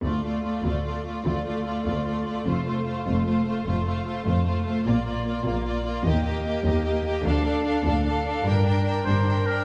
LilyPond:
<<
  \new Staff \with { instrumentName = "Violin section" } { \time 12/8 \key d \minor \tempo 4. = 100 d''8 d''8 d''8 d''8 d''8 d''8 d''8 d''8 d''8 d''8 d''8 d''8 | c''8 c''8 c''8 c''8 c''8 c''8 c''8 c''8 c''8 c''8 c''8 c''8 | d''8 d''8 d''8 d''8 d''8 d''8 ees''8 ees''8 ees''8 ees''8 ees''8 ees''8 | f''8 f''8 f''8 f''8 f''8 f''8 g''8 g''8 g''8 g''8 g''8 g''8 | }
  \new Staff \with { instrumentName = "Oboe" } { \time 12/8 \key d \minor r1. | r1. | r1. | r1 r8 c''4 bes'8 | }
  \new Staff \with { instrumentName = "Violin section" } { \time 12/8 \key d \minor f'8 f'8 f'8 f'8 f'8 f'8 f'8 f'8 f'8 f'8 f'8 f'8 | f'8 f'8 f'8 f'8 f'8 f'8 f'8 f'8 f'8 f'8 f'8 f'8 | f'8 f'8 f'8 f'8 f'8 f'8 g'8 g'8 g'8 g'8 g'8 g'8 | a'8 a'8 a'8 a'8 a'8 a'8 bes'8 bes'8 bes'8 bes'8 bes'8 bes'8 | }
  \new Staff \with { instrumentName = "Viola section" } { \time 12/8 \key d \minor a8 a8 a8 a8 a8 a8 a8 a8 a8 a8 a8 a8 | a8 a8 a8 a8 a8 a8 a8 a8 a8 a8 a8 a8 | bes8 bes8 bes8 bes8 bes8 bes8 bes8 bes8 bes8 bes8 bes8 bes8 | d'8 d'8 d'8 d'8 d'8 d'8 d'8 d'8 d'8 d'8 d'8 d'8 | }
  \new Staff \with { instrumentName = "Cello section" } { \clef bass \time 12/8 \key d \minor d,4. d,4. d,4. d,4. | f,4. f,4. f,4. f,4. | bes,4. bes,4. ees,4. ees,4. | d,4. d,4. g,4. g,4. | }
  \new Staff \with { instrumentName = "Double bass section" } { \clef bass \time 12/8 \key d \minor d,4. d,4. d,4. d,4. | f,,4. f,,4. f,,4. f,,4. | bes,,4. bes,,4. ees,4. ees,4. | d,4. d,4. g,,4. g,,4. | }
>>